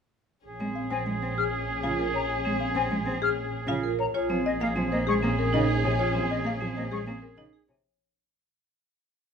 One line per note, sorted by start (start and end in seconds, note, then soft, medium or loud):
0.45 4.04 A#1 medium
0.45 3.95 C#4 medium
0.45 3.95 G#4 medium
0.60 0.72 G#3 soft
0.60 0.81 C4 soft
0.75 0.96 F5 soft
0.91 1.03 C4 medium
0.91 1.11 G#5 medium
0.91 0.97 G#5 medium
1.06 1.18 G#3 medium
1.22 1.34 C4 soft
1.38 1.58 G#4 medium
1.38 1.44 F6 medium
1.83 1.95 C#3 medium
1.83 2.04 F4 medium
1.83 2.04 F5 medium
1.99 2.19 A#4 medium
2.14 2.34 C#5 medium
2.14 2.21 A#5 medium
2.45 2.57 G#3 medium
2.45 2.65 C4 medium
2.60 2.81 F5 medium
2.75 2.87 C4 medium
2.75 2.82 G#5 medium
2.75 2.96 G#5 medium
2.91 3.03 G#3 medium
3.05 3.18 C4 medium
3.22 3.42 G#4 medium
3.22 3.29 F6 medium
3.67 3.79 C#3 medium
3.67 3.88 F4 medium
3.67 3.89 F5 medium
3.83 4.04 A#4 medium
3.99 4.13 C#5 medium
3.99 4.05 A#5 medium
4.13 7.74 A#1 medium
4.13 7.64 C#4 medium
4.13 4.35 F4 medium
4.13 7.64 G#4 medium
4.13 4.35 C#5 medium
4.29 4.41 F3 medium
4.29 4.50 C4 medium
4.45 4.51 D#5 medium
4.45 4.66 D#5 medium
4.60 4.72 A#3 medium
4.60 4.67 F5 medium
4.60 4.81 F5 medium
4.76 4.87 F3 medium
4.76 4.96 C4 medium
4.92 5.04 A#3 medium
4.92 5.12 C5 medium
4.92 4.98 D#5 medium
5.07 5.19 G#3 medium
5.07 5.27 G#4 medium
5.07 5.14 C#6 medium
5.22 5.34 A#3 medium
5.22 5.42 C4 medium
5.39 5.58 A#4 medium
5.53 5.65 C#3 medium
5.53 5.73 D#4 medium
5.53 5.73 D#5 medium
5.69 5.89 G#4 medium
5.84 5.95 C3 medium
5.84 5.98 C#5 medium
5.84 5.90 G#5 medium
5.99 6.20 F4 medium
5.99 6.19 C#5 medium
6.15 6.26 F3 medium
6.15 6.35 C4 medium
6.30 6.36 D#5 medium
6.30 6.50 D#5 medium
6.44 6.56 A#3 medium
6.44 6.52 F5 medium
6.44 6.66 F5 medium
6.61 6.72 F3 medium
6.61 6.81 C4 medium
6.76 6.88 A#3 medium
6.76 6.97 C5 medium
6.76 6.82 D#5 medium
6.91 7.03 G#3 medium
6.91 7.12 G#4 medium
6.91 6.98 C#6 medium
7.07 7.18 A#3 medium
7.07 7.27 C4 medium
7.22 7.42 A#4 medium
7.37 7.49 C#3 medium
7.37 7.58 D#4 medium
7.37 7.58 D#5 medium
7.53 7.73 G#4 medium
7.68 7.80 C3 medium
7.68 7.89 C#5 medium
7.68 7.75 G#5 medium